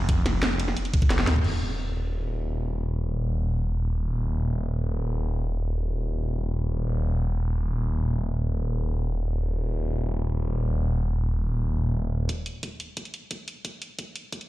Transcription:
Already playing: F1
0.09 kick, closed hi-hat
0.26 snare, closed hi-hat, ride bell
0.43 snare, closed hi-hat
0.60 closed hi-hat, ride bell
0.68 snare
0.77 closed hi-hat
0.85 closed hi-hat
0.94 kick, closed hi-hat, ride bell
1.02 kick, closed hi-hat
1.10 F1, snare, closed hi-hat
1.19 snare
1.27 D#2, snare, closed hi-hat, ride bell
1.36 closed hi-hat, mid tom
1.44 D#1, crash
6.87 D#1
12.29 kick, closed hi-hat
12.46 closed hi-hat
12.63 kick, closed hi-hat
12.80 closed hi-hat
12.97 kick, closed hi-hat
13.05 closed hi-hat
13.14 closed hi-hat
13.31 kick, closed hi-hat
13.48 closed hi-hat
13.65 kick, closed hi-hat
13.82 closed hi-hat
13.99 kick, closed hi-hat
14.16 closed hi-hat
14.32 kick, closed hi-hat
14.41 closed hi-hat

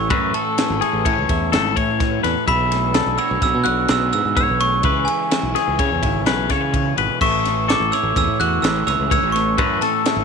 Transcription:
Already playing: A1 E3 A3 E4 C#6
0.09 F#2 A2 E3 A3 C#4 E4 B4, kick, ride
0.34 A3 A4 A5, ride
0.58 E4, snare, ride
0.70 G#1
0.81 A2 E3 A3 C#4 E4 G#4 A4, ride
0.93 A1
1.05 A2 E3 C#5, kick, ride
1.18 C#2
1.29 E2 E4, kick, ride
1.52 G#1 A2 E3 A3 C#4 E4 A4, snare, ride
1.76 A2 C#5, kick, ride
1.99 A2, kick, snare, ride
2.23 E2 A3 B4, snare, ride
2.46 B1 B2 E3 B3 D4 G#4 E5 B5, kick, ride
2.71 A3, snare, ride
2.94 D4 A4, snare, ride
3.06 B1
3.17 B2 E3 B3 D4 F#4 G#4 C#5 E6, ride
3.31 B1
3.40 B1 B2 E6, kick, snare, ride
3.55 B2
3.64 B1 D4 F#4 F#6, ride
3.88 B1 B2 E3 B3 D4 F#4 G#4 E6, snare, ride
4.13 G#2 E6, ride
4.25 G#2
4.36 B2 C#5 E6, kick, ride
4.50 B1
4.59 A3 C#6, ride
4.83 C#2 C#3 E3 G#3 C#4 E4 G#4 B4, kick, ride
5.05 E3 G#5, ride
5.31 E4, snare, ride
5.43 B1
5.54 C#3 E3 G#3 C#4 G#4, snare, ride
5.68 C#2
5.78 C#3 C#5, kick, ride
5.92 E2
6.02 G#1 E4, kick, ride
6.26 B1 C#3 E3 G#3 C#4 G#4 B4, snare, ride
6.49 C#3 A4 C#5, kick, snare, ride
6.61 B4
6.73 C#3, kick, ride
6.97 G#1 B2 B4, ride
7.20 A1 A2 E3 A3 C#4 E4 A4 E5 C#6, kick, crash
7.44 A3, snare, ride
7.69 E4 A4 D6, snare, ride
7.80 A1
7.91 A2 E3 A3 C#4 E4 A4 C#5 E6, snare, ride
8.03 A1
8.16 E2 E3 E6, kick, snare, ride
8.28 A2
8.40 E2 E4 F#4 F#6, ride
8.62 A1 A2 E3 A3 C#4 E4 A4 E6, snare, ride
8.87 C#2 C#5 E6, snare, ride
8.99 C#2
9.10 A2 C#5 E6, kick, ride
9.23 A1
9.32 A3 C#6, ride
9.36 snare
9.58 F#2 A2 E3 A3 C#4 E4 A4 B4, kick, ride
9.81 A3 A4 A5, snare, ride
10.05 E4, snare, ride
10.16 G#1

